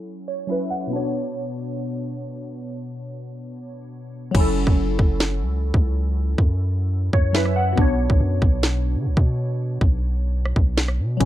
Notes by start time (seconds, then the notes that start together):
Already playing: F#3 C#4 E4 A4
0.28 C#5
0.47 F#3 C#4 E4 E5
0.52 B4
0.70 F#5
0.87 B2 B3
0.93 D4 C#5
4.31 F#1 F#3 C#4, kick, crash
4.37 E4 A4
4.67 F#1, kick
4.77 F#1
4.99 F#1, kick
5.20 snare
5.42 C#2
5.74 C#2, kick
6.38 F#2, kick
7.13 F#2 C#5, kick
7.33 F#3 C#4 E4 E5, snare
7.37 B4
7.45 cross-stick
7.56 F#5
7.73 B2 B3
7.78 B1 D4, kick
7.82 C#5
8.10 B1, kick
8.20 F#2
8.42 B1, kick
8.63 snare
8.95 D3
9.06 B1
9.17 B2, kick
9.81 B1, kick
10.45 cross-stick
10.56 B1, kick
10.78 snare
10.88 cross-stick
10.99 B2
11.17 F#1 F#3 C#4, kick, closed hi-hat